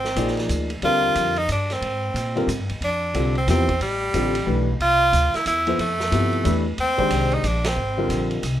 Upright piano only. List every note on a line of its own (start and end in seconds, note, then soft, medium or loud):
0.16 0.66 F3 medium
0.16 0.66 A#3 soft
0.16 0.67 D#4 medium
0.16 0.67 G#4 medium
0.16 0.67 D5 medium
0.83 1.33 D3 medium
0.83 1.33 G3 medium
0.83 1.33 C4 medium
0.83 1.33 F4 medium
0.83 1.34 A#4 medium
2.35 2.47 D3 medium
2.35 2.47 G3 medium
2.35 2.47 C4 medium
2.35 2.47 F4 medium
2.35 2.48 A#4 medium
3.14 3.33 D3 medium
3.14 3.34 G3 medium
3.14 3.34 C4 medium
3.14 3.34 F4 medium
3.14 3.34 A4 medium
3.48 3.66 C3 medium
3.48 3.66 F3 medium
3.48 3.67 B3 medium
3.48 3.67 E4 medium
3.48 3.67 G4 medium
4.14 4.33 D3 medium
4.14 4.33 G3 medium
4.14 4.33 C4 medium
4.14 4.33 F4 medium
4.14 4.33 A4 medium
4.46 4.65 E3 medium
4.46 4.65 A3 soft
4.46 4.66 D4 soft
4.46 4.66 G4 medium
4.46 4.66 B4 medium
5.67 5.78 F3 medium
5.67 5.78 B3 medium
5.67 5.78 E4 medium
5.67 5.78 A4 medium
5.67 5.79 C5 medium
6.11 6.43 C3 medium
6.11 6.43 F3 medium
6.11 6.44 B3 medium
6.11 6.44 E4 medium
6.11 6.43 G4 medium
6.43 6.63 E3 medium
6.43 6.63 A3 medium
6.43 6.64 D4 medium
6.43 6.64 G4 soft
6.43 6.64 B4 medium
6.98 7.41 D#3 medium
6.98 7.41 G#3 medium
6.98 7.42 D4 medium
6.98 7.42 G4 medium
6.98 7.42 C5 medium
7.97 8.41 D3 medium
7.97 8.40 G3 medium
7.97 8.41 C4 medium
7.97 8.41 F4 medium
7.97 8.41 A#4 medium